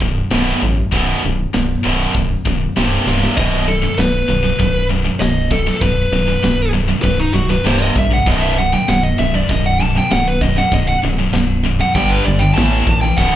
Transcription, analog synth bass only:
0.01 0.22 B0 loud
0.31 0.53 B0 medium
0.62 0.84 A1 medium
0.93 1.14 B0 medium
1.25 1.46 B0 medium
1.55 1.76 B0 medium
1.85 2.07 B0 medium
2.15 2.36 B0 medium
2.46 2.67 B0 medium
2.77 2.98 C1 medium
3.07 3.28 C1 medium
3.38 3.87 B0 loud
3.98 4.23 B0 medium
4.29 4.54 B0 medium
4.60 5.09 B0 medium
5.21 5.71 B0 loud
5.81 6.06 B0 medium
6.12 6.37 B0 medium
6.44 6.93 B0 medium
7.04 7.29 B0 loud
7.34 7.59 B0 medium
7.65 7.90 C1 loud
7.95 8.21 A#1 medium
8.26 8.76 B0 loud
8.89 9.13 B0 medium
9.19 9.44 B0 medium
9.50 10.00 B0 medium
10.12 10.61 B0 medium
10.72 10.97 B0 loud
11.03 11.28 B0 medium
11.33 11.83 B0 medium
11.95 12.20 G1 loud
12.27 12.52 G1 loud
12.58 12.82 A1 medium
12.87 13.12 A#1 medium
13.18 13.36 B0 medium

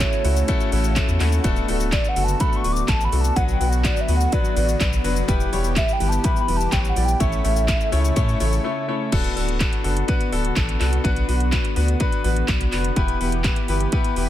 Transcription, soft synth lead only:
0.00 0.84 C#5 medium
1.92 2.10 D5 medium
2.08 2.25 F#5 loud
2.24 2.42 A5 loud
2.40 2.58 B5 loud
2.56 2.74 C#6 loud
2.72 2.90 D6 loud
2.88 3.06 A5 loud
3.04 3.22 B5 loud
3.21 3.36 A5 loud
3.36 3.43 F#5 loud
3.52 3.70 G5 medium
3.69 3.86 F#5 medium
3.85 4.02 D5 medium
4.01 4.16 E5 medium
4.17 4.34 F#5 medium
4.33 5.05 D5 medium
5.77 5.94 E5 loud
5.93 6.10 G5 loud
6.09 6.26 A5 loud
6.25 6.40 B5 loud
6.41 6.58 B5 loud
6.57 6.72 A5 loud
6.72 6.80 G5 loud
6.89 7.06 F#5 loud
7.05 7.22 G5 loud
7.20 8.88 E5 loud

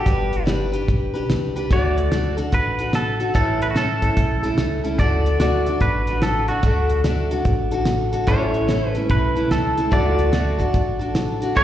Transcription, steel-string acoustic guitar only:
0.05 0.44 G3 medium
0.05 0.46 D4 medium
0.05 0.46 G4 medium
0.05 0.46 B4 medium
0.45 0.73 G3 medium
0.45 0.73 D4 medium
0.45 0.72 G4 medium
0.45 0.71 B4 medium
0.72 1.14 D4 soft
0.72 1.14 G4 medium
0.72 1.12 B4 medium
1.14 1.56 D4 soft
1.14 1.55 G4 medium
1.14 1.55 B4 medium
1.56 1.70 D4 soft
1.56 1.71 G4 medium
1.56 1.70 B4 medium
1.71 2.12 D3 medium
1.71 2.11 A3 medium
1.71 2.10 D4 medium
1.71 2.11 F#4 medium
1.71 2.13 A4 medium
2.11 2.38 A3 medium
2.11 2.38 D4 medium
2.11 2.37 F#4 medium
2.11 2.36 A4 medium
2.37 2.80 D4 soft
2.37 2.79 F#4 soft
2.37 2.79 A4 soft
2.79 3.20 D4 soft
2.79 3.19 F#4 soft
2.79 3.20 A4 medium
3.20 3.34 D4 soft
3.20 3.34 F#4 medium
3.20 3.34 A4 soft
3.34 3.75 A2 medium
3.34 3.75 E3 medium
3.34 3.74 A3 medium
3.34 3.74 C#4 medium
3.34 3.75 E4 medium
3.34 3.76 A4 medium
3.74 4.02 A3 medium
3.74 4.02 C#4 medium
3.74 4.01 E4 medium
3.74 4.01 A4 medium
4.02 4.45 A3 soft
4.02 4.43 C#4 soft
4.02 4.43 E4 soft
4.02 4.43 A4 soft
4.43 4.85 A3 soft
4.43 4.84 C#4 soft
4.43 4.83 E4 soft
4.43 4.83 A4 medium
4.84 4.99 A3 soft
4.84 4.99 C#4 medium
4.84 4.99 E4 medium
4.84 4.99 A4 medium
4.99 5.40 D3 medium
4.99 5.39 A3 medium
4.99 5.39 D4 medium
4.99 5.40 F#4 medium
4.99 5.41 A4 medium
5.40 5.66 A3 medium
5.40 5.67 D4 medium
5.40 5.66 F#4 medium
5.40 5.65 A4 medium
5.66 6.09 D4 soft
5.66 6.08 F#4 soft
5.66 6.08 A4 medium
6.08 6.50 D4 soft
6.08 6.49 F#4 soft
6.08 6.49 A4 medium
6.49 6.63 D4 soft
6.49 6.64 F#4 soft
6.49 6.63 A4 medium
6.64 7.05 D3 medium
6.64 7.03 A3 medium
6.64 7.03 D4 medium
6.64 7.04 F#4 medium
6.64 7.06 A4 medium
7.04 7.31 A3 medium
7.04 7.31 D4 medium
7.04 7.31 F#4 medium
7.04 7.30 A4 medium
7.31 7.73 D4 soft
7.31 7.72 F#4 soft
7.31 7.71 A4 medium
7.72 8.13 D4 soft
7.72 8.12 F#4 medium
7.72 8.12 A4 medium
8.12 8.28 D4 soft
8.12 8.28 F#4 medium
8.12 8.27 A4 medium
8.27 8.69 A2 medium
8.27 8.69 E3 medium
8.27 8.67 A3 medium
8.27 8.67 C#4 medium
8.27 8.68 E4 medium
8.27 8.69 A4 medium
8.67 8.95 A3 soft
8.67 8.95 C#4 medium
8.67 8.95 E4 medium
8.67 8.94 A4 medium
8.95 9.37 A3 soft
8.95 9.36 C#4 soft
8.95 9.35 E4 soft
8.95 9.35 A4 soft
9.36 9.78 A3 soft
9.36 9.77 C#4 soft
9.36 9.76 E4 soft
9.36 9.77 A4 medium
9.77 9.90 A3 soft
9.77 9.91 C#4 soft
9.77 9.91 E4 medium
9.77 9.91 A4 soft
9.91 10.33 D3 medium
9.91 10.31 A3 medium
9.91 10.32 D4 medium
9.91 10.32 F#4 medium
9.91 10.33 A4 medium
10.32 10.59 A3 medium
10.32 10.60 D4 medium
10.32 10.59 F#4 medium
10.32 10.57 A4 medium
10.59 11.00 D4 soft
10.59 10.99 F#4 soft
10.59 10.98 A4 medium
10.99 11.42 D4 soft
10.99 11.41 F#4 soft
10.99 11.39 A4 medium
11.41 11.54 D4 soft
11.41 11.54 F#4 medium
11.41 11.55 A4 medium
11.55 11.64 D3 medium
11.55 11.64 A3 medium
11.55 11.64 D4 medium
11.55 11.64 F#4 medium
11.55 11.64 A4 medium

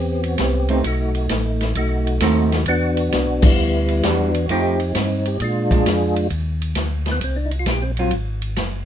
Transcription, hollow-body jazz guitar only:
0.69 0.82 A3 medium
0.69 0.83 C4 medium
0.69 0.83 D#4 medium
2.22 2.49 A3 medium
2.22 2.49 C4 medium
2.22 2.50 D#4 medium
4.03 4.31 E3 medium
4.03 4.31 G3 medium
4.03 4.31 D4 medium
4.03 4.31 F#4 medium
4.50 4.77 F3 medium
4.50 4.77 A3 medium
4.50 4.77 D#4 medium
4.50 4.77 G4 medium
5.71 5.84 F3 medium
5.71 5.84 G#3 medium
5.71 5.84 D4 medium
7.99 8.12 F#3 medium
7.99 8.12 C4 medium
7.99 8.12 F4 medium

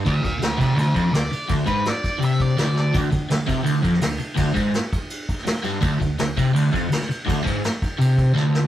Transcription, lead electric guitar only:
0.07 0.23 D5 loud
0.07 0.24 F5 loud
0.24 0.41 D5 medium
0.24 0.42 F5 medium
0.44 0.59 F#4 medium
0.44 0.60 D5 medium
0.61 0.77 F#4 medium
0.61 0.78 D5 medium
0.79 0.95 A4 medium
0.79 0.96 C5 loud
0.97 1.13 A4 medium
0.97 1.13 C5 medium
1.14 1.49 D5 loud
1.67 1.85 B4 medium
1.89 2.23 D5 loud
2.25 2.42 E5 loud
2.42 2.76 D5 loud
2.80 2.95 D5 loud

